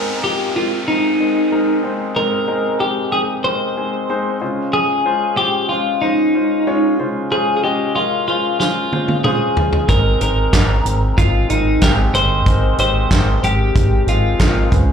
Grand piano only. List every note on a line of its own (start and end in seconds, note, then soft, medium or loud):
0.00 0.51 G#2 soft
0.00 0.23 G#3 medium
0.00 0.23 C4 medium
0.00 0.23 D#4 medium
0.00 0.55 A#4 medium
0.23 0.50 G#3 medium
0.23 0.50 C4 soft
0.23 0.50 D#4 soft
0.23 0.50 F4 medium
0.55 0.82 G#3 soft
0.55 0.82 C4 soft
0.55 0.82 D#4 soft
0.55 0.82 A#4 medium
0.88 1.14 G#3 soft
0.88 1.15 C4 soft
0.88 1.15 D#4 soft
0.88 1.15 A#4 medium
1.20 1.47 G#3 medium
1.20 1.47 C4 medium
1.20 1.47 D#4 medium
1.20 1.47 A#4 medium
1.52 1.79 G#3 medium
1.52 1.79 C4 medium
1.52 1.79 D#4 medium
1.52 1.79 A#4 medium
1.84 2.11 G#3 medium
1.84 2.11 C4 medium
1.84 2.11 D#4 medium
1.84 2.11 C5 medium
2.16 3.09 G#2 soft
2.16 2.43 G#3 medium
2.16 2.43 C4 medium
2.16 2.43 D#4 medium
2.16 2.43 A#4 medium
2.48 2.75 G#3 medium
2.48 2.75 C4 medium
2.48 2.75 D#4 medium
2.48 2.75 A#4 medium
2.80 3.07 G#3 medium
2.80 3.07 C4 soft
2.80 3.07 D#4 medium
2.80 3.07 A#4 medium
3.13 3.40 G#3 medium
3.13 3.40 C4 soft
3.13 3.40 D#4 medium
3.13 3.40 G4 medium
3.45 3.72 G#3 medium
3.45 3.72 C4 soft
3.45 3.72 D#4 soft
3.45 3.72 A#4 medium
3.77 4.04 G#3 medium
3.77 4.04 C4 medium
3.77 4.04 D#4 medium
3.77 4.04 G#4 medium
4.09 4.36 G#3 medium
4.09 4.37 C4 medium
4.09 4.36 D#4 medium
4.09 4.37 C5 medium
4.41 5.34 C#3 medium
4.41 4.96 G#3 medium
4.41 4.96 C#4 medium
4.41 4.96 F4 medium
4.41 4.96 C5 medium
5.05 5.33 G#3 medium
5.05 5.33 C#4 medium
5.05 5.33 F4 medium
5.05 5.33 C5 medium
5.38 5.65 G#3 medium
5.38 5.65 C#4 soft
5.38 5.65 F4 soft
5.38 5.65 C5 medium
5.70 5.97 G#3 medium
5.70 5.97 C#4 soft
5.70 5.97 F4 medium
5.70 5.97 C5 medium
6.02 6.29 G#3 medium
6.02 6.29 C#4 soft
6.02 6.29 F4 soft
6.02 6.30 C5 medium
6.35 6.62 G#3 medium
6.35 6.62 C#4 medium
6.35 6.62 F4 medium
6.35 6.62 C5 medium
6.67 6.94 G#3 medium
6.67 6.94 C#4 medium
6.67 6.94 F4 medium
6.67 6.94 C#5 medium
6.99 7.92 C#3 medium
6.99 7.26 G#3 medium
6.99 7.26 C#4 medium
6.99 7.26 F4 medium
6.99 7.26 C5 medium
7.31 7.58 G#3 medium
7.31 7.58 C#4 medium
7.31 7.58 F4 medium
7.31 7.59 C5 medium
7.63 7.91 G#3 medium
7.63 7.91 C#4 medium
7.63 7.91 F4 medium
7.63 7.91 D#5 medium
7.96 8.23 G#3 medium
7.96 8.23 C#4 medium
7.96 8.23 F4 soft
7.96 8.23 A#4 medium
8.28 8.55 G#3 medium
8.28 8.55 C#4 soft
8.28 8.55 F4 medium
8.28 8.55 C5 medium
8.60 8.87 G#3 medium
8.60 8.87 C#4 soft
8.60 8.87 F4 soft
8.60 8.87 C5 medium
8.93 9.20 G#3 medium
8.93 9.20 C#4 medium
8.93 9.20 F4 medium
8.93 9.20 C5 medium
9.25 9.52 G#3 medium
9.25 9.52 C#4 medium
9.25 9.52 F4 medium
9.25 9.52 C5 medium
9.57 9.84 G#3 soft
9.57 9.84 C#4 soft
9.57 9.84 F4 soft
9.57 9.84 C5 medium
9.89 10.82 G#2 soft
9.89 10.16 G#3 medium
9.89 10.16 C4 medium
9.89 10.16 D#4 medium
9.89 10.16 A#4 medium
10.21 10.48 G#3 medium
10.21 10.48 C4 medium
10.21 10.48 D#4 medium
10.21 10.48 A#4 medium
10.53 10.80 G#3 medium
10.53 10.80 C4 soft
10.53 10.80 A#4 medium
10.85 11.12 G#3 medium
10.85 11.12 C4 medium
10.85 11.12 D#4 soft
10.85 11.12 A#4 medium
11.18 11.45 G#3 soft
11.18 11.45 C4 soft
11.18 11.45 D#4 soft
11.18 11.45 A#4 medium
11.49 11.77 G#3 medium
11.49 11.77 C4 medium
11.49 11.77 D#4 medium
11.49 11.77 A#4 medium
11.82 12.09 G#3 medium
11.82 12.09 C4 medium
11.82 12.09 D#4 medium
11.82 12.09 G4 medium
12.14 12.41 G#3 medium
12.14 12.41 C4 soft
12.14 12.41 D#4 medium
12.14 12.41 A#4 medium
12.47 13.39 G#2 soft
12.47 12.74 G#3 medium
12.47 12.74 C4 medium
12.47 12.74 D#4 medium
12.47 12.74 A#4 medium
12.79 13.06 G#3 medium
12.79 13.06 C4 medium
12.79 13.06 D#4 medium
12.79 13.06 G4 medium
13.11 13.38 G#3 medium
13.11 13.38 C4 soft
13.11 13.38 D#4 medium
13.11 13.38 A#4 medium
13.43 13.70 G#3 medium
13.43 13.70 C4 medium
13.43 13.70 D#4 medium
13.43 13.70 A#4 medium
13.76 14.03 G#3 medium
13.76 14.03 C4 soft
13.76 14.03 D#4 soft
13.76 14.03 A#4 medium
14.07 14.35 G#3 medium
14.07 14.35 C4 medium
14.07 14.35 D#4 medium
14.07 14.35 A#4 medium
14.39 14.67 G#3 medium
14.39 14.67 C4 medium
14.39 14.67 D#4 medium
14.39 14.67 A#4 medium
14.72 14.93 C#3 medium
14.72 14.93 G#3 medium
14.72 14.93 C#4 medium
14.72 14.93 F4 medium
14.72 14.79 B4 medium
14.79 14.93 C5 medium